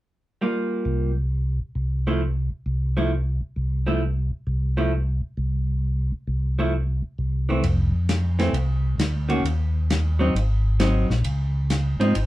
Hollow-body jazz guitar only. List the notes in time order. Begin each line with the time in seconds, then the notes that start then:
0.41 G3 A#3 F4
2.07 F3 A3 E4
2.97 F3 A3 E4
3.87 F3 A3 E4
4.77 F3 A3 E4
6.59 F3 A3 E4
7.49 E3 A3 C4
8.39 E3 A3 C4
9.29 D#3 A#3 C#4 F#4
10.19 F#3 C4 D#4
10.80 F#3 C4 D#4
12.00 F3 C4 D#4